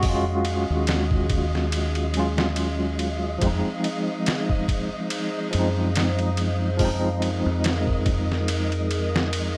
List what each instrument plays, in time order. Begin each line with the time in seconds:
Already playing: fingered electric bass F2, tine electric piano G#3 C#4 F4, ambient pad G#3 C#4 G#4 F5, synth texture D#5
0.00 tine electric piano G#3 F#4, kick, open hi-hat
0.06 tine electric piano C#4 F4
0.45 ride
0.70 fingered electric bass D#2
0.87 snare, ride
1.11 kick
1.30 kick, ride
1.55 snare
1.72 ride
1.95 ride
2.11 tine electric piano F#3 G#3, ride
2.17 tine electric piano C#4 F4
2.38 snare
2.56 ride
2.99 ride
3.38 fingered electric bass F2, tine electric piano F3 G#3, ambient pad D#4 G#4 C5, kick, ride
3.44 tine electric piano C4 D#4
3.84 ride
4.26 snare, ride
4.50 kick
4.68 kick, ride
5.10 ride
5.51 fingered electric bass F#2, tine electric piano F3 G#3, ride
5.56 tine electric piano C4 D#4
5.96 snare, ride
6.19 ride
6.37 ride
6.77 tine electric piano F3 G#3, ambient pad A#4, kick, open hi-hat
6.82 tine electric piano C4 D#4
7.22 ride
7.46 fingered electric bass F2
7.64 snare, ride
7.87 kick
8.06 kick, ride
8.32 snare
8.48 ride
8.72 ride
8.91 ride
9.16 snare
9.33 ride